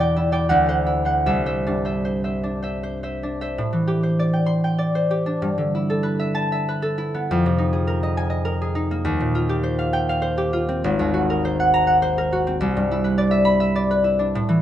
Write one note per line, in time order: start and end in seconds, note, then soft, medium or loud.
0.00 0.51 E2 medium
0.00 0.52 B2 medium
0.00 0.15 E4 medium
0.00 0.31 D5 medium
0.00 1.25 E5 soft
0.00 0.31 G5 medium
0.16 0.85 E4 medium
0.32 4.18 D5 medium
0.32 0.52 G5 medium
0.49 1.28 D2 medium
0.49 0.67 F#5 medium
0.69 1.04 C5 soft
0.69 1.05 F#5 medium
0.86 4.76 E4 soft
1.05 1.45 C5 soft
1.05 1.28 F#5 soft
1.26 3.58 C2 medium
1.26 1.45 E5 medium
1.46 1.84 C5 soft
1.46 1.84 E5 soft
1.67 3.59 G2 soft
1.67 2.42 D4 soft
1.85 2.04 C5 soft
1.85 2.23 E5 soft
2.05 2.23 C5 soft
2.24 2.61 C5 soft
2.24 2.62 E5 soft
2.43 3.22 D4 soft
2.62 2.82 C5 soft
2.62 3.02 E5 soft
2.83 3.02 C5 soft
3.03 3.40 C5 soft
3.03 3.40 E5 soft
3.23 5.25 D4 soft
3.41 4.02 C5 soft
3.41 6.18 E5 soft
3.58 5.47 A2 medium
3.73 5.46 E3 soft
3.87 5.09 G4 soft
4.03 4.94 C5 soft
4.19 4.77 D5 medium
4.33 4.63 G5 soft
4.46 5.45 C6 medium
4.64 8.54 G5 medium
4.78 7.32 D5 medium
4.95 5.45 C5 soft
5.11 9.01 G4 soft
5.26 7.32 D4 soft
5.42 7.31 G2 medium
5.58 7.31 D3 soft
5.75 6.97 E4 soft
5.90 6.81 A4 soft
6.03 6.67 B4 medium
6.20 6.51 E5 medium
6.35 7.31 A5 medium
6.52 7.32 E5 medium
6.69 7.32 B4 medium
6.82 7.31 A4 medium
6.98 7.31 E4 medium
7.14 7.32 B3 medium
7.31 9.09 F2 medium
7.46 9.09 C3 medium
7.58 8.74 D#4 medium
7.73 8.60 G#4 medium
7.87 8.44 A#4 medium
8.03 8.29 D#5 medium
8.17 9.09 G#5 medium
8.30 12.20 D#5 medium
8.45 11.29 A#4 medium
8.62 9.09 G#4 medium
8.75 12.61 D#4 medium
8.91 12.62 A#3 medium
9.05 10.86 D#2 medium
9.20 10.86 A#2 medium
9.35 10.52 F4 medium
9.49 10.36 G4 medium
9.63 10.21 C5 medium
9.79 10.08 F5 medium
9.93 10.85 G5 medium
10.09 10.86 F5 medium
10.22 11.44 C5 medium
10.38 10.85 G4 medium
10.53 10.86 F4 medium
10.69 12.46 C4 medium
10.84 12.62 G#1 medium
10.99 12.62 D#2 medium
11.14 12.31 F#4 medium
11.30 12.17 A#4 medium
11.45 12.01 C5 medium
11.60 11.86 F#5 medium
11.74 12.63 A#5 medium
11.87 12.62 F#5 medium
12.02 14.62 C5 medium
12.18 12.63 A#4 medium
12.32 12.63 F#4 medium
12.47 14.62 C4 medium
12.61 14.37 C2 medium
12.77 14.38 G2 medium
12.91 14.03 E4 medium
13.04 13.89 B4 medium
13.18 13.74 D5 medium
13.31 13.59 E5 medium
13.45 14.62 B5 medium
13.60 14.62 E5 medium
13.76 14.36 D5 medium
13.91 14.62 B4 medium
14.04 14.62 E4 medium
14.19 14.36 D4 medium
14.35 14.62 A2 medium
14.49 14.62 E3 medium